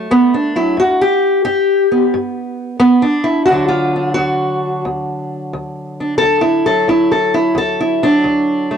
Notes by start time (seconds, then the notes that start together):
Already playing: F#3 A3
0.11 D2 B3
0.34 D4
0.56 F#3 E4
0.77 G2 F#4
1.01 G4
1.45 G2 G4
1.92 B3
2.14 G2
2.80 G2 B3
3.02 D4
3.24 E4
3.46 F#4
3.50 D2 D3 F#3 D4
3.68 F4
3.96 D4
4.14 D2 F#4
4.85 D2
5.53 D2
6.00 D4
6.18 A4
6.22 D2
6.41 E4
6.66 F#3 A4
6.88 D2 E4
7.12 A4
7.34 E4
7.55 D2 A4
7.81 E4
8.03 F#3 D4
8.24 D2
8.71 A3